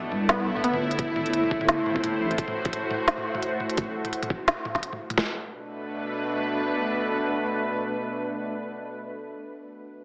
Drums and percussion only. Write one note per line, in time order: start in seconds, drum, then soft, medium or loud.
0.12 mid tom soft
0.29 snare loud
0.29 closed hi-hat medium
0.29 mid tom medium
0.56 mid tom soft
0.64 closed hi-hat medium
0.74 mid tom medium
0.91 closed hi-hat soft
0.99 kick loud
0.99 closed hi-hat medium
0.99 mid tom medium
1.16 mid tom medium
1.26 closed hi-hat soft
1.33 closed hi-hat medium
1.43 mid tom medium
1.51 kick loud
1.61 mid tom medium
1.69 snare loud
1.69 closed hi-hat medium
1.86 mid tom medium
1.96 kick medium
2.04 closed hi-hat medium
2.04 mid tom medium
2.31 closed hi-hat soft
2.31 mid tom medium
2.38 kick loud
2.38 closed hi-hat medium
2.48 mid tom medium
2.65 kick loud
2.65 closed hi-hat soft
2.73 closed hi-hat medium
2.73 mid tom medium
2.91 mid tom medium
3.08 snare loud
3.08 closed hi-hat medium
3.18 mid tom medium
3.35 mid tom medium
3.43 closed hi-hat medium
3.60 mid tom medium
3.70 closed hi-hat soft
3.77 kick loud
3.77 closed hi-hat medium
3.77 mid tom medium
4.05 closed hi-hat soft
4.05 mid tom medium
4.13 closed hi-hat medium
4.23 closed hi-hat soft
4.23 mid tom medium
4.30 kick loud
4.48 snare loud
4.48 closed hi-hat medium
4.48 mid tom medium
4.65 mid tom medium
4.75 kick medium
4.75 snare soft
4.83 closed hi-hat medium
4.93 mid tom medium
5.10 closed hi-hat soft
5.10 mid tom medium
5.18 kick loud
5.18 snare loud